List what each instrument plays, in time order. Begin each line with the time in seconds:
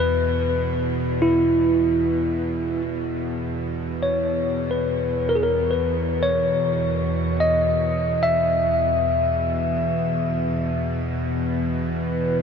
Already playing: synth drone E2 B2
0.00 tine electric piano B4
1.22 tine electric piano E4
3.07 synth drone E2 B2
4.03 tine electric piano C#5
4.71 tine electric piano B4
5.29 tine electric piano A#4
5.35 tine electric piano G#4
5.43 tine electric piano A#4
5.71 tine electric piano B4
6.23 tine electric piano C#5
7.40 tine electric piano D#5
8.23 tine electric piano E5
11.77 glass harmonica B4